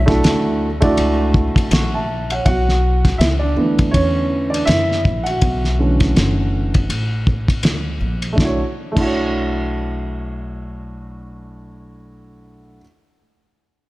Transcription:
0.00 0.19 B1 loud
0.00 0.57 E5 loud
0.06 0.65 A3 medium
0.06 0.65 D4 medium
0.06 0.66 E4 medium
0.06 0.66 F#4 medium
0.06 0.66 A4 medium
0.06 kick medium
0.06 snare soft
0.06 ride medium
0.23 0.94 D2 medium
0.23 snare medium
0.23 hi-hat pedal soft
0.23 ride medium
0.80 2.01 A3 medium
0.80 2.01 D4 medium
0.80 2.01 E4 medium
0.80 2.02 F#4 medium
0.80 1.72 D5 loud
0.80 kick medium
0.80 ride medium
0.97 1.53 C#2 medium
0.97 ride medium
1.34 kick medium
1.56 kick medium
1.56 ride medium
1.71 2.41 A#1 medium
1.71 1.93 F#5 medium
1.71 1.92 C#6 medium
1.71 snare loud
1.71 hi-hat pedal medium
1.71 ride medium
1.94 2.29 E5 medium
1.94 2.29 A5 medium
2.30 2.66 C#5 medium
2.30 2.44 F#5 medium
2.30 ride medium
2.46 3.16 B1 loud
2.46 3.17 F#4 medium
2.46 3.22 F#5 loud
2.46 kick loud
2.46 ride medium
2.69 snare soft
3.05 kick medium
3.05 snare soft
3.05 ride medium
3.18 3.54 C#2 medium
3.18 3.26 E4 medium
3.18 3.23 E5 medium
3.18 snare loud
3.18 hi-hat pedal soft
3.18 ride medium
3.39 3.90 D4 medium
3.39 3.94 D5 medium
3.56 3.92 D2 medium
3.56 5.77 D3 soft
3.56 5.78 E3 soft
3.56 5.78 A3 soft
3.56 6.49 B3 medium
3.79 kick medium
3.79 ride medium
3.91 4.64 E2 medium
3.91 4.49 C#4 medium
3.91 4.53 C#5 medium
3.91 kick medium
3.91 ride medium
4.50 4.67 D4 medium
4.50 4.67 D5 medium
4.54 ride medium
4.65 5.03 F#2 medium
4.65 5.23 E4 medium
4.65 5.27 E5 medium
4.65 snare loud
4.65 hi-hat pedal medium
4.65 ride medium
4.92 snare soft
5.05 5.40 A#1 medium
5.05 kick medium
5.24 7.60 F#4 medium
5.24 7.58 F#5 medium
5.24 ride medium
5.41 6.12 B1 loud
5.41 kick medium
5.41 ride medium
5.65 snare soft
5.79 6.86 D3 medium
5.79 6.86 E3 soft
5.79 6.86 A3 soft
5.79 6.86 C#4 medium
6.00 kick medium
6.00 snare soft
6.00 ride medium
6.16 6.86 F#1 medium
6.16 snare loud
6.16 hi-hat pedal soft
6.16 ride medium
6.74 kick medium
6.74 ride medium
6.89 7.60 A1 medium
6.89 ride medium
7.27 kick medium
7.48 kick medium
7.48 ride medium
7.63 7.99 D2 medium
7.63 snare loud
7.63 hi-hat pedal soft
7.63 ride medium
8.01 8.36 A#1 medium
8.22 ride soft
8.33 8.58 A3 medium
8.33 8.60 D4 medium
8.38 8.61 B1 medium
8.38 8.61 E4 medium
8.38 kick medium
8.38 snare medium
8.42 8.63 F#4 medium
8.42 8.65 C#5 medium
8.92 12.78 A3 medium
8.92 12.79 D4 medium
8.96 12.80 B1 medium
8.96 12.81 E4 medium
8.96 kick medium
8.96 crash medium
9.00 12.82 F#4 medium
9.00 12.84 C#5 medium

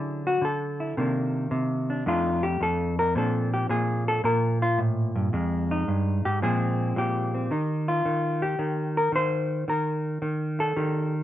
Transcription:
0.00 0.40 D3 medium
0.00 0.95 F#3 soft
0.00 0.95 C#4 soft
0.00 0.25 E4 soft
0.00 0.25 G#4 medium
0.27 0.43 F#4 medium
0.41 0.94 D3 medium
0.41 1.35 A4 medium
0.80 0.95 E4 soft
0.97 1.50 C3 medium
0.97 2.06 D#3 soft
0.97 2.04 A#3 soft
0.97 1.89 D4 medium
1.51 2.04 C3 medium
1.90 2.08 D4 soft
2.06 2.59 F2 medium
2.06 3.13 A3 medium
2.06 3.13 D4 soft
2.06 2.43 D#4 medium
2.06 2.44 F4 medium
2.43 2.60 G4 medium
2.61 3.15 F2 medium
2.61 2.99 A4 medium
2.99 3.16 A#4 medium
3.15 3.68 A#2 medium
3.15 5.74 F3 soft
3.15 5.31 C4 soft
3.15 5.32 D4 medium
3.15 3.53 A4 medium
3.54 3.70 G4 medium
3.69 4.23 A#2 medium
3.69 4.07 G#4 medium
4.08 4.25 A4 medium
4.24 5.32 A#2 medium
4.24 4.61 A#4 medium
4.62 4.79 F4 loud
4.78 5.15 A2 medium
5.16 5.33 G2 medium
5.33 5.87 F2 medium
5.33 6.42 G#3 soft
5.71 6.25 D#4 medium
5.88 6.24 G2 medium
6.25 6.42 G#2 medium
6.25 6.42 G4 medium
6.42 6.95 A#2 medium
6.42 7.49 F3 medium
6.42 7.51 G#3 soft
6.42 7.33 C4 medium
6.42 6.96 G#4 medium
6.96 7.50 A#2 medium
6.96 7.88 G4 medium
7.35 7.51 C4 medium
7.51 8.05 D#3 medium
7.51 9.66 D#4 soft
7.88 8.42 F4 medium
8.05 8.58 D#3 medium
8.42 8.96 G4 medium
8.59 9.11 D#3 medium
8.97 9.14 A#4 medium
9.12 9.67 D#3 medium
9.12 9.69 C5 medium
9.68 10.21 D#3 medium
9.68 10.60 A#4 medium
10.22 10.75 D#3 medium
10.60 11.14 A4 medium
10.77 11.23 D#3 medium
10.77 11.23 G4 soft

